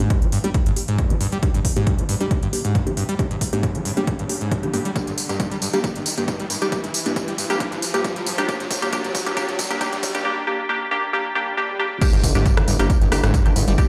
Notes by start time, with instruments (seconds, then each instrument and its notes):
Already playing: riser
0.00 acid bass G#2
0.10 acid bass G2, kick, closed hi-hat
0.22 acid bass G3, closed hi-hat
0.32 acid bass G2, open hi-hat
0.44 acid bass G3, synth stab A#3 D4 G4, closed hi-hat
0.54 kick, closed hi-hat
0.66 acid bass G2, closed hi-hat
0.76 synth stab A#3 D4 G4, open hi-hat
0.88 acid bass G#2, closed hi-hat
0.99 acid bass G2, kick, closed hi-hat
1.10 acid bass G3, synth stab A#3 D4 G4, closed hi-hat
1.21 acid bass G2, open hi-hat
1.32 acid bass G3, closed hi-hat
1.43 synth stab A#3 D4 G4, kick, closed hi-hat
1.54 acid bass G2, closed hi-hat
1.65 kick, open hi-hat
1.76 acid bass G#2, synth stab A#3 D4 G4, closed hi-hat
1.87 acid bass G2, kick, closed hi-hat
1.98 acid bass G3, closed hi-hat
2.09 acid bass G2, open hi-hat
2.20 acid bass G3, synth stab A#3 D4 G4, closed hi-hat
2.31 kick, closed hi-hat
2.43 acid bass G2, closed hi-hat
2.53 synth stab A#3 D4 G4, open hi-hat
2.65 acid bass G#2, closed hi-hat
2.75 acid bass G2, kick, closed hi-hat
2.87 acid bass G3, synth stab A#3 D4 G4, closed hi-hat
2.97 acid bass G2, open hi-hat
3.09 acid bass G3, closed hi-hat
3.19 synth stab A#3 D4 G4, kick, closed hi-hat
3.31 acid bass G2, closed hi-hat
3.41 kick, open hi-hat
3.53 acid bass G#2, synth stab A#3 D4 G4, closed hi-hat
3.63 acid bass G2, kick, closed hi-hat
3.75 acid bass G3, closed hi-hat
3.85 acid bass G2, open hi-hat
3.97 acid bass G3, synth stab A#3 D4 G4, closed hi-hat
4.07 kick, closed hi-hat
4.19 acid bass G2, closed hi-hat
4.29 synth stab A#3 D4 G4, open hi-hat
4.41 acid bass G#2, closed hi-hat
4.51 acid bass G2, kick, closed hi-hat
4.63 acid bass G3, synth stab A#3 D4 G4, closed hi-hat
4.74 acid bass G2, synth stab A#3 D4 G4, open hi-hat
4.85 acid bass G3, closed hi-hat
4.96 synth stab A#3 D4 G4, kick, closed hi-hat, tambourine
5.07 acid bass G2, closed hi-hat, tambourine
5.18 open hi-hat, tambourine
5.29 acid bass G2, synth stab A#3 D4 G4, closed hi-hat, tambourine
5.40 acid bass G2, kick, closed hi-hat, tambourine
5.51 acid bass G3, closed hi-hat, tambourine
5.62 acid bass G2, open hi-hat, tambourine
5.73 acid bass G3, synth stab A#3 D4 G4, closed hi-hat, tambourine
5.84 synth stab A#3 D4 G4, kick, closed hi-hat, tambourine
5.95 acid bass G2, closed hi-hat, tambourine
6.06 open hi-hat, tambourine
6.18 acid bass G2, synth stab A#3 D4 G4, closed hi-hat, tambourine
6.28 acid bass G2, kick, closed hi-hat, tambourine
6.40 acid bass G3, closed hi-hat, tambourine
6.50 acid bass G2, open hi-hat, tambourine
6.62 acid bass G3, synth stab A#3 D4 G4, closed hi-hat, tambourine
6.72 synth stab A#3 D4 G4, kick, closed hi-hat, tambourine
6.84 acid bass G2, closed hi-hat, tambourine
6.94 open hi-hat, tambourine
7.06 acid bass G2, synth stab A#3 D4 G4, closed hi-hat, tambourine
7.16 acid bass G2, kick, closed hi-hat, tambourine
7.28 acid bass G3, closed hi-hat, tambourine
7.38 acid bass G2, open hi-hat, tambourine
7.50 acid bass G3, synth stab A#3 D4 G4, closed hi-hat, tambourine
7.60 synth stab A#3 D4 G4, kick, closed hi-hat, tambourine
7.72 acid bass G2, closed hi-hat, tambourine
7.82 open hi-hat, tambourine
7.94 acid bass G2, synth stab A#3 D4 G4, closed hi-hat, tambourine
8.04 acid bass G2, kick, closed hi-hat, tambourine
8.16 acid bass G3, closed hi-hat, tambourine
8.27 acid bass G2, open hi-hat, tambourine
8.38 acid bass G3, synth stab A#3 D4 G4, closed hi-hat, tambourine
8.49 synth stab A#3 D4 G4, kick, closed hi-hat, tambourine
8.60 acid bass G2, closed hi-hat, tambourine
8.71 kick, open hi-hat, tambourine
8.82 acid bass G2, synth stab A#3 D4 G4, closed hi-hat, tambourine
8.93 synth stab A#3 D4 G4, kick, closed hi-hat, tambourine
9.04 acid bass G2, closed hi-hat, tambourine
9.15 kick, open hi-hat, tambourine
9.26 acid bass G2, synth stab A#3 D4 G4, closed hi-hat, tambourine
9.37 synth stab A#3 D4 G4, kick, closed hi-hat, tambourine
9.48 acid bass G2, closed hi-hat, tambourine
9.59 kick, open hi-hat, tambourine
9.70 acid bass G2, synth stab A#3 D4 G4, closed hi-hat, tambourine
9.81 synth stab A#3 D4 G4, kick, closed hi-hat, tambourine
9.93 acid bass G2, closed hi-hat, tambourine
10.03 kick, open hi-hat, tambourine
10.15 acid bass G2, synth stab A#3 D4 G4, closed hi-hat, tambourine
10.25 synth stab A#3 D4 G4
10.47 synth stab A#3 D4 G4
10.69 synth stab A#3 D4 G4
10.91 synth stab A#3 D4 G4
11.13 synth stab A#3 D4 G4, swell
11.35 synth stab A#3 D4 G4
11.57 synth stab A#3 D4 G4
11.79 synth stab A#3 D4 G4
12.01 synth stab A#3 D4 G4, kick, closed hi-hat, crash, tambourine
12.13 analog synth bass G1, acid bass G2, closed hi-hat, tambourine
12.24 analog synth bass G1, kick, open hi-hat, tambourine
12.35 analog synth bass G1, acid bass G#2, synth stab A#3 D4 G4, closed hi-hat, tambourine
12.46 acid bass G2, kick, closed hi-hat, tambourine
12.57 analog synth bass G1, acid bass G3, cross-stick, closed hi-hat
12.68 analog synth bass G1, acid bass G2, open hi-hat, tambourine
12.79 analog synth bass G1, acid bass G3, synth stab A#3 D4 G4, closed hi-hat, tambourine
12.90 kick, closed hi-hat, tambourine
13.01 analog synth bass G1, acid bass G2, closed hi-hat, tambourine
13.12 analog synth bass G1, synth stab A#3 D4 G4, cross-stick, open hi-hat, tambourine
13.23 analog synth bass G1, acid bass G#2, cross-stick, closed hi-hat
13.34 acid bass G2, kick, closed hi-hat, tambourine
13.46 analog synth bass G1, acid bass G3, synth stab A#3 D4 G4, closed hi-hat, tambourine
13.56 analog synth bass G1, acid bass G2, open hi-hat, tambourine
13.68 analog synth bass G1, acid bass G3, closed hi-hat, tambourine
13.78 synth stab A#3 D4 G4, kick, closed hi-hat, tambourine